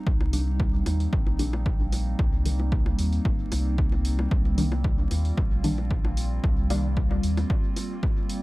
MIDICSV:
0, 0, Header, 1, 5, 480
1, 0, Start_track
1, 0, Key_signature, -3, "minor"
1, 0, Tempo, 530973
1, 59, Time_signature, 4, 2, 24, 8
1, 7617, End_track
2, 0, Start_track
2, 0, Title_t, "Ambient pad"
2, 0, Program_c, 0, 92
2, 0, Note_on_c, 0, 55, 75
2, 0, Note_on_c, 0, 58, 73
2, 0, Note_on_c, 0, 60, 70
2, 0, Note_on_c, 0, 63, 85
2, 3888, Note_off_c, 0, 63, 0
2, 3899, Note_on_c, 0, 65, 86
2, 7617, Note_off_c, 0, 55, 0
2, 7617, Note_off_c, 0, 58, 0
2, 7617, Note_off_c, 0, 60, 0
2, 7617, Note_off_c, 0, 65, 0
2, 7617, End_track
3, 0, Start_track
3, 0, Title_t, "Synth stab"
3, 0, Program_c, 1, 62
3, 299, Note_on_c, 1, 51, 94
3, 299, Note_on_c, 1, 55, 90
3, 299, Note_on_c, 1, 58, 86
3, 299, Note_on_c, 1, 62, 111
3, 458, Note_off_c, 1, 51, 0
3, 458, Note_off_c, 1, 55, 0
3, 458, Note_off_c, 1, 58, 0
3, 458, Note_off_c, 1, 62, 0
3, 1259, Note_on_c, 1, 51, 90
3, 1259, Note_on_c, 1, 55, 83
3, 1259, Note_on_c, 1, 58, 79
3, 1259, Note_on_c, 1, 62, 98
3, 1507, Note_off_c, 1, 51, 0
3, 1507, Note_off_c, 1, 55, 0
3, 1507, Note_off_c, 1, 58, 0
3, 1507, Note_off_c, 1, 62, 0
3, 2219, Note_on_c, 1, 62, 103
3, 2220, Note_on_c, 1, 51, 92
3, 2220, Note_on_c, 1, 55, 85
3, 2220, Note_on_c, 1, 58, 85
3, 2467, Note_off_c, 1, 51, 0
3, 2467, Note_off_c, 1, 55, 0
3, 2467, Note_off_c, 1, 58, 0
3, 2467, Note_off_c, 1, 62, 0
3, 4139, Note_on_c, 1, 51, 101
3, 4139, Note_on_c, 1, 55, 87
3, 4139, Note_on_c, 1, 58, 92
3, 4139, Note_on_c, 1, 62, 107
3, 4299, Note_off_c, 1, 51, 0
3, 4299, Note_off_c, 1, 55, 0
3, 4299, Note_off_c, 1, 58, 0
3, 4299, Note_off_c, 1, 62, 0
3, 5099, Note_on_c, 1, 51, 86
3, 5099, Note_on_c, 1, 55, 79
3, 5099, Note_on_c, 1, 58, 80
3, 5099, Note_on_c, 1, 62, 96
3, 5347, Note_off_c, 1, 51, 0
3, 5347, Note_off_c, 1, 55, 0
3, 5347, Note_off_c, 1, 58, 0
3, 5347, Note_off_c, 1, 62, 0
3, 6059, Note_on_c, 1, 51, 93
3, 6059, Note_on_c, 1, 55, 86
3, 6059, Note_on_c, 1, 58, 89
3, 6059, Note_on_c, 1, 62, 105
3, 6307, Note_off_c, 1, 51, 0
3, 6307, Note_off_c, 1, 55, 0
3, 6307, Note_off_c, 1, 58, 0
3, 6307, Note_off_c, 1, 62, 0
3, 7617, End_track
4, 0, Start_track
4, 0, Title_t, "Sub bass"
4, 0, Program_c, 2, 38
4, 59, Note_on_c, 2, 36, 94
4, 738, Note_off_c, 2, 36, 0
4, 780, Note_on_c, 2, 39, 77
4, 969, Note_off_c, 2, 39, 0
4, 1019, Note_on_c, 2, 34, 77
4, 1938, Note_off_c, 2, 34, 0
4, 1979, Note_on_c, 2, 36, 97
4, 2659, Note_off_c, 2, 36, 0
4, 2700, Note_on_c, 2, 39, 76
4, 2889, Note_off_c, 2, 39, 0
4, 2939, Note_on_c, 2, 31, 91
4, 3128, Note_off_c, 2, 31, 0
4, 3181, Note_on_c, 2, 36, 84
4, 3859, Note_off_c, 2, 36, 0
4, 3899, Note_on_c, 2, 36, 93
4, 4578, Note_off_c, 2, 36, 0
4, 4619, Note_on_c, 2, 39, 82
4, 4808, Note_off_c, 2, 39, 0
4, 4859, Note_on_c, 2, 34, 79
4, 5778, Note_off_c, 2, 34, 0
4, 5819, Note_on_c, 2, 36, 95
4, 6499, Note_off_c, 2, 36, 0
4, 6539, Note_on_c, 2, 39, 76
4, 6728, Note_off_c, 2, 39, 0
4, 7617, End_track
5, 0, Start_track
5, 0, Title_t, "Drums"
5, 59, Note_on_c, 9, 36, 123
5, 149, Note_off_c, 9, 36, 0
5, 186, Note_on_c, 9, 61, 77
5, 276, Note_off_c, 9, 61, 0
5, 299, Note_on_c, 9, 46, 83
5, 389, Note_off_c, 9, 46, 0
5, 539, Note_on_c, 9, 36, 106
5, 539, Note_on_c, 9, 61, 45
5, 629, Note_off_c, 9, 36, 0
5, 629, Note_off_c, 9, 61, 0
5, 779, Note_on_c, 9, 46, 68
5, 779, Note_on_c, 9, 61, 78
5, 869, Note_off_c, 9, 46, 0
5, 869, Note_off_c, 9, 61, 0
5, 906, Note_on_c, 9, 46, 34
5, 996, Note_off_c, 9, 46, 0
5, 1019, Note_on_c, 9, 36, 124
5, 1109, Note_off_c, 9, 36, 0
5, 1145, Note_on_c, 9, 61, 48
5, 1236, Note_off_c, 9, 61, 0
5, 1259, Note_on_c, 9, 46, 82
5, 1350, Note_off_c, 9, 46, 0
5, 1386, Note_on_c, 9, 61, 75
5, 1476, Note_off_c, 9, 61, 0
5, 1499, Note_on_c, 9, 36, 106
5, 1590, Note_off_c, 9, 36, 0
5, 1739, Note_on_c, 9, 46, 71
5, 1740, Note_on_c, 9, 61, 44
5, 1830, Note_off_c, 9, 46, 0
5, 1830, Note_off_c, 9, 61, 0
5, 1979, Note_on_c, 9, 36, 124
5, 1979, Note_on_c, 9, 61, 74
5, 2069, Note_off_c, 9, 36, 0
5, 2070, Note_off_c, 9, 61, 0
5, 2219, Note_on_c, 9, 46, 80
5, 2310, Note_off_c, 9, 46, 0
5, 2346, Note_on_c, 9, 61, 44
5, 2437, Note_off_c, 9, 61, 0
5, 2459, Note_on_c, 9, 36, 107
5, 2549, Note_off_c, 9, 36, 0
5, 2586, Note_on_c, 9, 61, 77
5, 2676, Note_off_c, 9, 61, 0
5, 2699, Note_on_c, 9, 46, 70
5, 2790, Note_off_c, 9, 46, 0
5, 2826, Note_on_c, 9, 46, 33
5, 2916, Note_off_c, 9, 46, 0
5, 2939, Note_on_c, 9, 36, 121
5, 2940, Note_on_c, 9, 61, 46
5, 3029, Note_off_c, 9, 36, 0
5, 3030, Note_off_c, 9, 61, 0
5, 3179, Note_on_c, 9, 46, 81
5, 3180, Note_on_c, 9, 61, 78
5, 3270, Note_off_c, 9, 46, 0
5, 3270, Note_off_c, 9, 61, 0
5, 3419, Note_on_c, 9, 36, 106
5, 3509, Note_off_c, 9, 36, 0
5, 3546, Note_on_c, 9, 61, 42
5, 3637, Note_off_c, 9, 61, 0
5, 3659, Note_on_c, 9, 46, 70
5, 3750, Note_off_c, 9, 46, 0
5, 3786, Note_on_c, 9, 61, 77
5, 3876, Note_off_c, 9, 61, 0
5, 3899, Note_on_c, 9, 36, 120
5, 3989, Note_off_c, 9, 36, 0
5, 4026, Note_on_c, 9, 61, 41
5, 4116, Note_off_c, 9, 61, 0
5, 4139, Note_on_c, 9, 46, 79
5, 4230, Note_off_c, 9, 46, 0
5, 4265, Note_on_c, 9, 61, 76
5, 4356, Note_off_c, 9, 61, 0
5, 4379, Note_on_c, 9, 36, 100
5, 4469, Note_off_c, 9, 36, 0
5, 4619, Note_on_c, 9, 46, 69
5, 4619, Note_on_c, 9, 61, 42
5, 4709, Note_off_c, 9, 61, 0
5, 4710, Note_off_c, 9, 46, 0
5, 4746, Note_on_c, 9, 46, 31
5, 4836, Note_off_c, 9, 46, 0
5, 4859, Note_on_c, 9, 36, 113
5, 4859, Note_on_c, 9, 61, 76
5, 4949, Note_off_c, 9, 36, 0
5, 4949, Note_off_c, 9, 61, 0
5, 5099, Note_on_c, 9, 46, 79
5, 5189, Note_off_c, 9, 46, 0
5, 5225, Note_on_c, 9, 61, 42
5, 5316, Note_off_c, 9, 61, 0
5, 5339, Note_on_c, 9, 36, 99
5, 5429, Note_off_c, 9, 36, 0
5, 5466, Note_on_c, 9, 61, 75
5, 5556, Note_off_c, 9, 61, 0
5, 5579, Note_on_c, 9, 46, 72
5, 5670, Note_off_c, 9, 46, 0
5, 5819, Note_on_c, 9, 36, 116
5, 5819, Note_on_c, 9, 61, 40
5, 5909, Note_off_c, 9, 36, 0
5, 5909, Note_off_c, 9, 61, 0
5, 6059, Note_on_c, 9, 46, 79
5, 6059, Note_on_c, 9, 61, 70
5, 6149, Note_off_c, 9, 46, 0
5, 6149, Note_off_c, 9, 61, 0
5, 6299, Note_on_c, 9, 36, 96
5, 6389, Note_off_c, 9, 36, 0
5, 6426, Note_on_c, 9, 61, 42
5, 6516, Note_off_c, 9, 61, 0
5, 6539, Note_on_c, 9, 46, 66
5, 6630, Note_off_c, 9, 46, 0
5, 6666, Note_on_c, 9, 46, 31
5, 6666, Note_on_c, 9, 61, 74
5, 6756, Note_off_c, 9, 46, 0
5, 6756, Note_off_c, 9, 61, 0
5, 6779, Note_on_c, 9, 36, 114
5, 6869, Note_off_c, 9, 36, 0
5, 7019, Note_on_c, 9, 46, 79
5, 7019, Note_on_c, 9, 61, 42
5, 7109, Note_off_c, 9, 46, 0
5, 7110, Note_off_c, 9, 61, 0
5, 7259, Note_on_c, 9, 36, 98
5, 7259, Note_on_c, 9, 61, 73
5, 7349, Note_off_c, 9, 36, 0
5, 7349, Note_off_c, 9, 61, 0
5, 7499, Note_on_c, 9, 46, 67
5, 7589, Note_off_c, 9, 46, 0
5, 7617, End_track
0, 0, End_of_file